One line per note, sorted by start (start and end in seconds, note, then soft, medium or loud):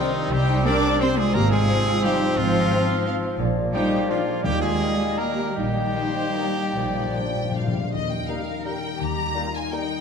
0.00 0.31 C3 medium
0.00 0.31 D#3 medium
0.00 0.11 G3 medium
0.00 1.36 G3 loud
0.00 0.11 C4 medium
0.00 0.32 C4 loud
0.00 0.48 C4 medium
0.00 1.30 C4 loud
0.00 0.34 D#4 loud
0.00 0.65 G4 medium
0.00 0.15 C5 medium
0.00 1.30 C5 medium
0.00 0.31 D#5 medium
0.00 1.00 C6 medium
0.16 0.83 C5 medium
0.32 0.59 C2 loud
0.32 1.36 C3 medium
0.32 0.66 G3 loud
0.32 0.65 D#4 loud
0.32 0.65 G4 loud
0.32 0.65 G5 loud
0.49 3.41 C4 medium
0.66 0.78 G3 medium
0.66 0.78 C4 medium
0.66 1.01 D4 loud
0.66 1.36 G4 medium
0.66 1.00 A#4 loud
0.66 1.03 D5 loud
0.66 0.74 G5 medium
0.66 1.00 D6 loud
0.84 1.17 C5 medium
1.01 1.13 G3 medium
1.01 1.18 C4 loud
1.01 1.13 C4 medium
1.01 1.07 G4 loud
1.01 1.19 C5 loud
1.01 1.09 G5 medium
1.01 1.17 C6 loud
1.01 3.41 C6 medium
1.18 1.34 G#3 loud
1.18 1.34 F4 loud
1.18 1.36 G#4 loud
1.18 1.67 C5 medium
1.18 1.34 G#5 loud
1.34 1.62 G#1 loud
1.34 2.36 G#2 medium
1.34 3.39 F3 loud
1.34 1.51 A#3 loud
1.34 3.35 C4 loud
1.34 1.41 G4 loud
1.34 1.50 A#4 loud
1.34 3.10 C5 medium
1.34 1.51 A#5 loud
1.51 2.53 F3 medium
1.51 2.04 G#3 loud
1.51 2.03 F4 loud
1.51 2.05 G#4 loud
1.51 2.03 G#5 loud
1.68 1.82 F3 medium
1.68 1.82 C4 medium
1.68 2.03 C5 medium
1.68 1.76 F5 medium
1.87 2.20 F4 medium
2.04 2.17 F3 medium
2.04 2.37 G3 loud
2.04 2.17 C4 medium
2.04 2.37 D#4 loud
2.04 2.39 G4 loud
2.04 2.69 C5 medium
2.04 2.12 F5 medium
2.04 2.37 G5 medium
2.21 2.87 F4 medium
2.37 2.65 G#1 loud
2.37 3.41 G#2 medium
2.37 3.37 F3 loud
2.37 3.39 C4 loud
2.37 3.40 F4 loud
2.37 3.39 F5 loud
2.54 4.46 F3 medium
2.71 2.84 F3 medium
2.71 2.85 C4 medium
2.71 3.05 C5 medium
2.71 2.79 F5 medium
2.89 3.22 F4 medium
3.05 3.18 F3 medium
3.05 3.18 C4 medium
3.05 3.14 F5 medium
3.23 4.46 F4 medium
3.39 3.68 A#1 loud
3.39 4.46 A#2 medium
3.39 4.46 F3 medium
3.39 5.53 A#3 medium
3.39 4.42 D5 medium
3.56 4.46 G#3 medium
3.73 3.87 F3 medium
3.73 4.07 G3 loud
3.73 3.86 D4 medium
3.73 4.07 D#4 loud
3.73 4.12 G4 loud
3.73 5.95 A#4 medium
3.73 3.82 D5 medium
3.73 4.07 G5 loud
3.91 4.26 G#4 medium
4.09 4.22 F3 medium
4.09 4.44 F3 medium
4.09 4.22 D4 medium
4.09 4.44 D4 medium
4.09 4.44 F4 loud
4.09 4.46 D5 medium
4.09 4.18 D5 medium
4.09 4.44 F5 medium
4.28 4.46 G#4 medium
4.44 4.74 D#2 medium
4.44 4.95 D#3 loud
4.44 5.58 D#3 medium
4.44 6.45 G3 medium
4.44 4.62 G3 medium
4.44 4.61 D#4 loud
4.44 4.61 G4 loud
4.44 6.76 D#5 medium
4.44 4.61 G5 loud
4.62 5.17 G#3 loud
4.62 6.78 D#4 medium
4.62 5.18 F4 medium
4.62 5.20 G#4 loud
4.62 5.18 G#5 medium
4.80 4.93 G3 medium
4.80 4.94 D#4 medium
4.80 6.15 G4 medium
4.80 4.89 D#5 medium
4.98 5.36 D#5 medium
5.18 5.32 G3 medium
5.18 5.56 A#3 medium
5.18 5.32 D#4 medium
5.18 5.56 G4 loud
5.18 5.56 A#4 loud
5.18 5.26 D#5 medium
5.18 5.56 A#5 medium
5.18 9.08 A#5 medium
5.38 6.35 D#5 medium
5.56 5.89 A#1 medium
5.56 6.75 A#2 medium
5.56 7.71 G3 medium
5.56 7.71 A#3 medium
5.56 7.75 D#4 medium
5.56 7.71 G4 loud
5.56 7.75 G5 loud
5.76 6.77 G3 medium
5.95 6.11 G3 medium
5.95 6.10 D#4 medium
5.95 7.14 A#4 medium
5.95 6.34 C5 medium
6.16 6.56 G4 medium
6.36 6.51 G3 medium
6.36 6.51 D#4 medium
6.36 6.76 A#4 medium
6.36 6.77 D#5 medium
6.57 6.78 G4 medium
6.76 7.09 A#1 medium
6.76 6.82 A#2 soft
6.76 7.94 A#2 medium
6.76 7.71 F3 medium
6.76 7.15 D5 medium
6.76 7.75 D5 medium
6.84 6.90 A#2 soft
6.92 6.99 A#2 soft
6.92 7.94 F3 soft
7.00 7.08 A#2 soft
7.09 7.16 A#2 medium
7.15 7.25 A#2 soft
7.15 7.31 F3 medium
7.15 7.31 D4 medium
7.15 8.46 A#4 medium
7.15 7.55 G5 medium
7.26 7.34 A#2 medium
7.35 7.42 A#2 medium
7.35 7.73 F4 medium
7.43 7.50 A#2 medium
7.51 7.58 A#2 medium
7.55 7.70 F3 medium
7.55 7.70 D4 medium
7.55 7.94 D5 medium
7.55 7.92 F5 medium
7.60 7.66 A#2 medium
7.67 7.74 A#2 medium
7.75 7.82 A#2 medium
7.75 7.94 F4 medium
7.83 7.90 A#2 medium
7.93 8.22 D#2 medium
7.93 8.99 D#3 medium
7.93 8.09 D#5 medium
8.10 9.16 G3 soft
8.10 8.28 G5 medium
8.28 8.42 G3 medium
8.28 8.42 A#3 soft
8.28 8.36 A#3 medium
8.28 8.42 D#4 soft
8.28 9.34 D#4 soft
8.28 8.36 G4 medium
8.28 8.96 A#4 medium
8.28 8.37 A#4 soft
8.28 8.65 F5 medium
8.28 8.35 A#5 medium
8.47 8.82 A#4 medium
8.65 8.77 G3 medium
8.65 8.78 G3 medium
8.65 8.78 A#3 medium
8.65 8.73 A#3 medium
8.65 8.78 D#4 soft
8.65 8.74 G4 soft
8.65 9.71 G4 soft
8.65 8.73 A#4 soft
8.65 8.99 G5 medium
8.65 8.72 A#5 medium
8.83 9.53 A#4 soft
9.00 9.29 D#2 medium
9.00 10.01 D#3 medium
9.00 9.35 G4 medium
9.00 9.54 A#5 loud
9.17 10.01 G3 soft
9.34 9.48 G3 medium
9.34 9.49 G3 medium
9.34 9.43 A#3 medium
9.34 9.48 A#3 medium
9.34 9.49 D#4 medium
9.34 10.01 D#4 medium
9.34 9.72 F4 medium
9.34 9.43 G4 medium
9.34 9.43 A#4 medium
9.34 9.43 A#5 medium
9.54 9.88 A#4 medium
9.54 9.73 G#5 medium
9.72 9.84 G3 medium
9.72 9.84 A#3 medium
9.72 9.80 A#3 medium
9.72 9.85 D#4 medium
9.72 10.01 D#4 medium
9.72 9.80 G4 medium
9.72 10.01 G4 medium
9.72 9.80 A#4 medium
9.72 10.01 G5 medium
9.72 9.79 A#5 medium
9.90 10.01 A#4 medium